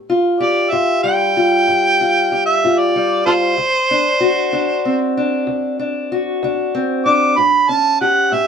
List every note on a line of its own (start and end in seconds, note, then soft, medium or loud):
0.00 0.34 G2 medium
0.10 0.71 F4 medium
0.40 2.30 G4 medium
0.40 0.72 D5 medium
0.71 1.29 G2 medium
0.71 1.36 F4 medium
0.71 1.02 E5 medium
1.03 2.94 G3 medium
1.03 2.42 G5 loud
1.37 2.00 F4 medium
1.68 2.25 G2 medium
2.01 2.63 F4 medium
2.32 3.54 G4 medium
2.46 2.80 E5 medium
2.64 3.20 G2 medium
2.64 3.25 F4 medium
2.78 3.24 D5 medium
2.96 3.58 G3 medium
3.26 3.33 F4 medium
3.26 3.54 F4 medium
3.26 3.34 A4 medium
3.26 5.12 C5 loud
3.57 4.14 D2 medium
3.91 4.51 D4 medium
4.21 6.10 F#4 medium
4.53 5.10 D2 medium
4.53 5.16 D4 medium
4.85 6.73 C4 medium
5.17 5.78 D4 medium
5.47 6.04 D2 medium
5.79 6.42 D4 medium
6.12 7.34 F#4 medium
6.43 6.99 D2 medium
6.43 7.05 D4 medium
6.75 7.34 C4 medium
7.06 7.33 D4 medium
7.06 7.40 D6 medium
7.38 7.94 A2 medium
7.38 7.71 B5 medium
7.69 8.31 C#4 medium
7.69 8.00 A5 medium
8.01 8.47 G4 medium
8.01 8.35 F#5 medium
8.32 8.47 A2 medium
8.32 8.47 C#4 medium
8.32 8.47 E5 medium